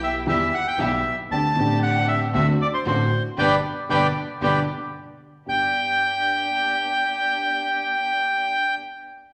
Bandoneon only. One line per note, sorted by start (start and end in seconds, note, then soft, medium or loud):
0.04 0.15 E5 loud
0.29 0.54 E5 loud
0.54 0.67 F#5 loud
0.68 0.79 G5 loud
0.80 1.16 E5 medium
1.32 1.79 A5 loud
1.83 2.06 F#5 loud
2.08 2.20 E5 loud
2.35 2.46 E5 loud
2.62 2.67 D5 loud
2.74 2.86 C5 medium
2.87 3.23 C5 medium
3.39 3.55 B4 loud
3.39 3.55 D5 loud
3.39 3.55 G5 loud
3.90 4.07 B4 loud
3.90 4.07 D5 loud
3.90 4.07 G5 loud
4.43 4.60 B4 medium
4.43 4.60 D5 medium
4.43 4.60 G5 medium
5.49 8.75 G5 loud